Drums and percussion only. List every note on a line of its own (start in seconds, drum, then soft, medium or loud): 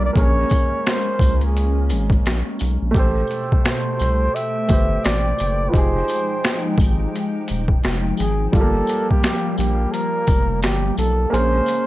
0.16 kick loud
0.16 closed hi-hat medium
0.50 kick medium
0.50 closed hi-hat medium
0.50 tambourine medium
0.86 finger snap medium
0.86 snare loud
0.86 closed hi-hat medium
1.19 kick medium
1.19 closed hi-hat medium
1.19 tambourine medium
1.41 closed hi-hat soft
1.56 closed hi-hat medium
1.89 closed hi-hat medium
1.89 tambourine soft
2.10 kick medium
2.10 closed hi-hat soft
2.26 finger snap medium
2.26 snare medium
2.26 closed hi-hat medium
2.59 closed hi-hat medium
2.59 tambourine medium
2.95 kick loud
2.95 closed hi-hat medium
3.27 closed hi-hat medium
3.27 tambourine soft
3.52 kick medium
3.65 finger snap loud
3.65 snare loud
3.65 closed hi-hat medium
4.00 closed hi-hat medium
4.00 tambourine medium
4.36 closed hi-hat medium
4.69 kick loud
4.69 closed hi-hat medium
4.69 tambourine medium
5.05 finger snap medium
5.05 snare loud
5.05 closed hi-hat medium
5.38 closed hi-hat medium
5.38 tambourine medium
5.74 kick loud
5.74 closed hi-hat medium
6.08 closed hi-hat medium
6.08 tambourine soft
6.44 finger snap loud
6.44 snare loud
6.44 closed hi-hat medium
6.78 kick loud
6.78 closed hi-hat medium
6.78 tambourine medium
7.15 closed hi-hat medium
7.48 closed hi-hat medium
7.48 tambourine soft
7.68 kick medium
7.83 finger snap medium
7.83 snare loud
7.83 closed hi-hat medium
8.17 closed hi-hat medium
8.17 tambourine medium
8.53 kick loud
8.53 closed hi-hat medium
8.87 closed hi-hat medium
8.87 tambourine soft
9.11 kick medium
9.23 finger snap medium
9.23 snare loud
9.23 closed hi-hat medium
9.58 closed hi-hat medium
9.58 tambourine medium
9.94 closed hi-hat medium
10.27 kick loud
10.27 closed hi-hat medium
10.27 tambourine medium
10.63 finger snap medium
10.63 snare loud
10.63 closed hi-hat medium
10.97 closed hi-hat medium
10.97 tambourine medium
11.34 closed hi-hat medium
11.66 closed hi-hat medium
11.66 tambourine soft